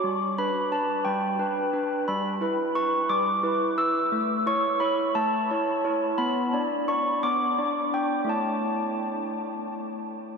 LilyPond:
\new Staff \with { instrumentName = "Handbells" } { \time 6/8 \key a \mixolydian \tempo 4. = 58 << { d'''8 b''8 a''8 g''4. | b''4 cis'''8 d'''4 e'''8~ | e'''8 cis'''8 b''8 a''4. | b''4 cis'''8 d'''4 g''8 |
a''2~ a''8 r8 | } \\ { g8 <d' b'>8 <d' b'>8 g8 <d' b'>8 <d' b'>8 | g8 <e' b'>8 <e' b'>8 g8 <e' b'>8 <e' b'>8 | a8 <e' cis''>8 <e' cis''>8 a8 <e' cis''>8 <e' cis''>8 | b8 <d' d''>8 <d' d''>8 b8 <d' d''>8 <d' d''>8 |
<a e' cis''>2. | } >> }